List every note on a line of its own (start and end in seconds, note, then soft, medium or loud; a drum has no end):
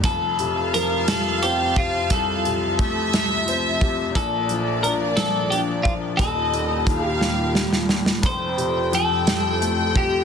0.04 2.07 F1 medium
0.04 4.11 F2 medium
0.04 2.07 F2 medium
0.04 6.14 F3 medium
0.04 4.11 C4 medium
0.04 0.74 A4 loud
0.04 2.74 F5 loud
0.04 4.11 A5 medium
0.04 kick loud
0.04 closed hi-hat loud
0.39 1.07 C3 medium
0.39 closed hi-hat soft
0.74 2.07 F3 medium
0.74 1.09 A#4 medium
0.74 closed hi-hat medium
1.08 1.76 C3 medium
1.08 1.42 A4 loud
1.08 snare loud
1.08 closed hi-hat medium
1.43 2.75 C4 medium
1.43 1.77 G4 medium
1.43 closed hi-hat medium
1.76 2.45 C3 medium
1.76 2.12 F4 medium
1.76 kick medium
1.76 closed hi-hat soft
2.10 4.11 C2 medium
2.10 3.43 A4 loud
2.10 kick loud
2.10 closed hi-hat loud
2.45 3.12 C3 soft
2.45 closed hi-hat soft
2.79 4.11 A3 medium
2.79 4.15 E5 loud
2.79 kick loud
2.79 closed hi-hat medium
3.13 3.80 C3 medium
3.13 snare loud
3.13 closed hi-hat medium
3.48 4.14 C4 medium
3.48 closed hi-hat medium
3.81 4.14 C3 medium
3.81 kick medium
3.81 closed hi-hat soft
4.15 6.15 A#1 medium
4.15 6.17 A#2 medium
4.15 6.15 A#2 medium
4.15 6.17 A#3 medium
4.15 6.17 D4 medium
4.15 4.83 A4 loud
4.15 6.19 D5 loud
4.15 kick loud
4.15 closed hi-hat loud
4.49 5.16 F3 medium
4.49 closed hi-hat soft
4.83 5.51 D4 medium
4.83 4.92 A#4 loud
4.83 closed hi-hat medium
5.17 5.85 F3 medium
5.17 5.50 A4 loud
5.17 snare loud
5.17 closed hi-hat loud
5.50 6.17 D4 medium
5.50 5.60 G4 medium
5.50 closed hi-hat medium
5.83 6.18 F3 medium
5.83 5.93 F4 medium
5.83 kick medium
5.83 closed hi-hat soft
6.17 8.20 D#1 medium
6.17 8.20 D#2 medium
6.17 8.22 D#2 medium
6.17 8.22 D#3 medium
6.17 8.22 F4 medium
6.17 8.22 G4 medium
6.17 7.06 A4 medium
6.17 6.86 D#5 medium
6.17 kick loud
6.17 closed hi-hat loud
6.53 7.19 A#2 medium
6.53 closed hi-hat soft
6.87 8.20 D#3 medium
6.87 7.90 F5 loud
6.87 kick medium
6.87 closed hi-hat medium
7.06 7.50 G4 medium
7.21 7.87 A#2 medium
7.21 snare medium
7.54 8.21 G3 soft
7.54 snare medium
7.73 snare medium
7.89 8.22 A#2 medium
7.89 snare medium
8.06 snare loud
8.22 10.24 F1 medium
8.22 10.24 F2 medium
8.22 10.24 F3 medium
8.22 10.24 C4 medium
8.22 10.24 A4 medium
8.22 8.94 C5 loud
8.22 10.24 G5 loud
8.22 kick medium
8.22 closed hi-hat loud
8.57 9.25 C3 medium
8.57 closed hi-hat soft
8.92 10.24 F3 medium
8.92 9.92 A4 medium
8.92 closed hi-hat medium
9.27 9.94 C3 soft
9.27 snare loud
9.27 closed hi-hat medium
9.61 10.24 A3 medium
9.61 closed hi-hat medium
9.96 10.24 C3 medium
9.96 10.24 G4 medium
9.96 kick medium
9.96 closed hi-hat soft